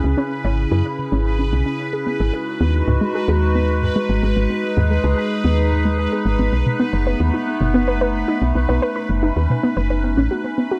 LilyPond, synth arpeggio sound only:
\new Staff \with { instrumentName = "Synth arpeggio sound" } { \time 4/4 \key gis \phrygian \tempo 4 = 111 cis16 cis'16 r16 cis''16 r16 e'16 r16 cis16 cis'16 r16 cis'16 r16 cis'16 r16 gis'16 b16 | gis'16 gis'16 r16 b16 r16 gis,16 gis16 gis'16 gis'16 r16 b16 r16 gis,16 gis16 gis'16 gis'16 | r16 b16 r16 gis,16 gis16 gis'16 gis'16 r16 b16 r16 gis,16 gis16 gis'16 gis'16 r16 b16 | r16 b,16 b16 b'16 b'16 r16 dis'16 r16 b,16 b16 b'16 b'16 r16 dis'16 r16 b,16 |
b16 b'16 b'16 r16 dis'16 r16 b,16 b16 b'16 b'16 b16 cis'16 fis'16 b16 b16 fis'16 | }